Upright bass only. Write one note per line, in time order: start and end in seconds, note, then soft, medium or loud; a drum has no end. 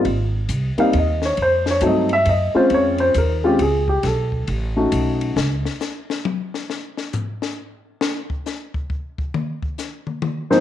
0.05 0.48 G#1 medium
0.49 0.76 C2 medium
0.77 muted upright bass stroke soft
0.94 1.37 D#2 medium
1.37 1.81 F2 medium
1.81 2.25 G2 medium
2.26 2.53 F#2 medium
2.54 muted upright bass stroke soft
2.70 3.13 F2 medium
3.15 3.58 D#2 medium
3.59 4.02 C#2 medium
4.03 4.46 B1 medium
4.48 4.91 A1 medium
4.92 5.35 B1 medium
5.36 5.64 C#2 medium